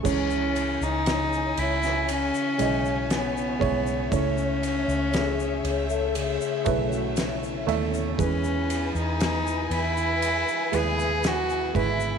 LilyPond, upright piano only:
<<
  \new Staff \with { instrumentName = "Upright piano" } { \time 4/4 \key cis \minor \tempo 4 = 59 <e gis cis''>2 r8 <gis e' dis''>4 <gis e' cis''>8 | <a e' cis''>2 r8 <a e' b'>4 <a e' e''>8 | <gis gis' b'>2 r8 <gis e' b'>4 <gis e' b'>8 | }
  \new Staff \with { instrumentName = "Upright piano" } { \clef bass \time 4/4 \key cis \minor cis4. r2 r8 | cis4. r2 r8 | e4. r2 r8 | }
>>